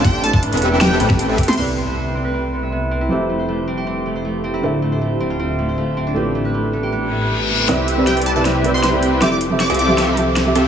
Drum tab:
CC |--------------------------------|x-------------------------------|--------------------------------|--------------------------------|
HH |x---x---x-xxx---x---x---x---xxxx|--------------------------------|--------------------------------|--------------------------------|
SD |----------------o-----o-------o-|--------------------------------|--------------------------------|--------------------------------|
BD |o-----o---------------o-----o---|--------------------------------|--------------------------------|--------------------------------|

CC |--------------------------------|--------------------------------|--------------------------------|
HH |--------------------------------|x---x---x-xxx---x---x---x---x---|x---x---x-xxx---x---x---x---x---|
SD |--------------------------------|o-------o-------o-------o-------|o-------o-------o-------o-------|
BD |--------------------------------|--------------------------------|--------------------------------|